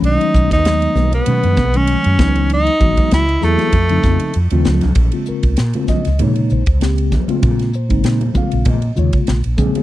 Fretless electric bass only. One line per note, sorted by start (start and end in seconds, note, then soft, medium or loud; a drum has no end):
0.02 0.16 B1 medium
0.35 0.48 B1 medium
0.51 0.86 D#2 medium
0.95 1.20 B1 medium
1.28 1.41 B2 loud
1.44 1.55 F#2 medium
1.57 1.95 B1 medium
2.06 2.17 F#2 medium
2.19 2.68 C#2 medium
2.81 2.94 G#1 medium
3.12 3.36 C#2 loud
3.43 3.56 E2 medium
3.73 3.98 F2 medium
4.04 4.17 F2 medium
4.36 4.51 F2 medium
4.52 4.65 D#2 medium
4.66 4.82 C#2 medium
4.84 4.95 C2 medium
4.96 5.10 A#1 medium
5.29 muted fretless electric bass stroke soft
5.43 5.55 C#2 medium
5.59 5.72 A#2 medium
5.88 muted fretless electric bass stroke soft
6.07 6.23 C#2 medium
6.21 6.53 A#2 medium
6.52 6.65 A#1 medium
6.67 7.15 C#2 medium
7.29 muted fretless electric bass stroke soft
7.43 7.92 A#2 medium
7.91 8.02 G#1 medium
8.05 8.29 A#2 loud
8.53 8.64 A#1 medium
8.66 8.90 A#2 medium
8.98 9.11 D#2 medium
9.28 9.41 A#1 loud
9.46 9.69 A#1 medium